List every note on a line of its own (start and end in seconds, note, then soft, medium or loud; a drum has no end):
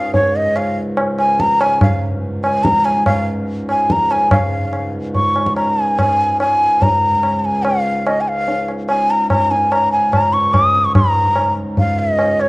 0.00 4.30 C#2 medium
0.00 4.30 G#2 medium
0.00 0.14 F5 medium
0.14 0.38 C#5 medium
0.14 tabla tin medium
0.14 tabla ge medium
0.36 0.58 D#5 medium
0.56 0.78 F5 medium
0.56 tabla na medium
0.97 tabla na medium
1.19 1.42 G#5 medium
1.19 tabla na medium
1.40 1.63 A#5 loud
1.40 tabla ke medium
1.61 1.82 G#5 medium
1.61 tabla na medium
1.81 2.02 F5 medium
1.81 tabla na loud
1.81 tabla ge medium
2.44 2.65 G#5 medium
2.44 tabla na medium
2.64 2.86 A#5 loud
2.64 tabla ke medium
2.85 3.06 G#5 medium
2.85 tabla na medium
3.06 3.26 F5 medium
3.06 tabla na medium
3.06 tabla ge medium
3.69 3.93 G#5 medium
3.69 tabla na medium
3.90 4.13 A#5 loud
3.90 tabla ke medium
4.11 4.32 G#5 medium
4.11 tabla na medium
4.31 10.94 C#2 medium
4.31 10.95 G#2 medium
4.31 4.90 F5 medium
4.31 tabla na loud
4.31 tabla ge medium
4.73 tabla na medium
5.15 5.54 C#6 medium
5.15 tabla tin medium
5.15 tabla ge medium
5.36 tabla na medium
5.46 tabla ke medium
5.56 5.82 A#5 medium
5.56 tabla na medium
5.82 5.99 G#5 medium
5.99 6.40 G#5 medium
5.99 tabla na medium
5.99 tabla ge medium
6.40 6.84 G#5 medium
6.40 tabla na medium
6.82 7.39 A#5 medium
6.82 tabla tin medium
6.82 tabla ge medium
7.23 tabla na medium
7.39 7.47 A#5 medium
7.45 7.66 G#5 medium
7.64 8.08 F5 medium
7.64 tabla na medium
8.06 8.22 D#5 medium
8.06 tabla na medium
8.21 8.30 G#5 medium
8.28 8.69 F5 loud
8.48 tabla tin medium
8.68 tabla na medium
8.89 9.12 G#5 medium
8.89 tabla na medium
9.10 9.29 A#5 medium
9.30 9.52 A#5 medium
9.30 tabla na medium
9.30 tabla ge medium
9.51 9.73 G#5 medium
9.51 tabla te medium
9.72 9.91 A#5 medium
9.72 tabla na medium
9.92 10.14 G#5 medium
10.13 10.35 A#5 medium
10.13 tabla na medium
10.13 tabla ge medium
10.33 10.55 C#6 medium
10.33 tabla te medium
10.54 10.86 D#6 medium
10.54 tabla na medium
10.54 tabla ge medium
10.75 tabla te medium
10.85 10.95 C#6 medium
10.95 12.49 C#2 medium
10.95 12.49 G#2 medium
10.95 11.53 A#5 medium
10.95 tabla na loud
10.95 tabla ge loud
11.36 tabla na medium
11.77 12.00 F5 medium
11.77 tabla tin medium
11.77 tabla ge medium
11.99 12.14 E5 medium
12.14 12.42 D#5 medium
12.19 tabla na medium
12.39 12.49 C#5 medium
12.39 tabla na medium